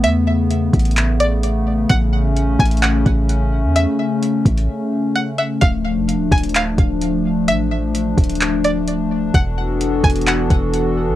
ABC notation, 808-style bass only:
X:1
M:4/4
L:1/16
Q:1/4=129
K:A
V:1 name="808-style bass" clef=bass
E,,6 A,,,8- A,,,2 | A,,,6 A,,,4 A,,,4- A,,, E,,- | E,, z4 z A,,,2 z8 | D,,,3 =F,,,3/2 D,,,3/2 D,,,4 D,,,6 |
A,,,6 D,,,8- D,,,2 | E,,,6 E,,,4 E,,,4- E,,, B,,, |]